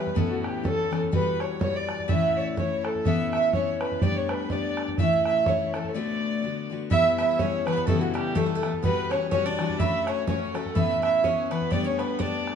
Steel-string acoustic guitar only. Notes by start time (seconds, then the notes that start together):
Already playing: E3 G3 B3 G4
0.15 A2 E3 B3 C#4 E4
0.64 E3 B3 C#4 E4
0.90 E3 B3 C#4 E4
1.12 E3 G3 B3 F#4
1.60 E3 G3 B3 F#4
2.08 A2 E3 A3 C#4 E4
2.56 E3 A3 C#4 E4
3.05 A2 E3 B3 C#4 E4
3.53 E3 B3 C#4 E4
4.02 G3 A3 B3 D4
4.51 G3 A3 B3 D4
4.99 A2 E3 A3 C#4 E4
5.47 E3 A3 C#4 E4
5.74 E3 A3 C#4 E4
5.94 D2 A2 D3 A3 B3 F#4
6.43 D3 A3 B3 F#4
6.70 D3 A3 B3 F#4
6.90 E3 G3 B3 E4
7.38 E3 G3 B3 E4
7.66 E3 G3 B3 E4
7.87 C#3 E3 G3 B3 E4
8.35 E3 G3 B3 E4
8.63 E3 G3 B3 E4
8.83 E3 G3 B3 F#4
9.32 E3 G3 B3 F#4
9.59 E3 G3 B3 F#4
9.80 F#3 A3 C#4 F#4
10.27 F#3 A3 C#4 F#4
10.54 F#3 A3 C#4 F#4
10.75 A2 E3 B3 C#4 E4
11.23 E3 B3 C#4 E4
11.51 E3 B3 C#4 E4
11.72 G3 A3 B3 D4
12.19 G3 A3 B3 D4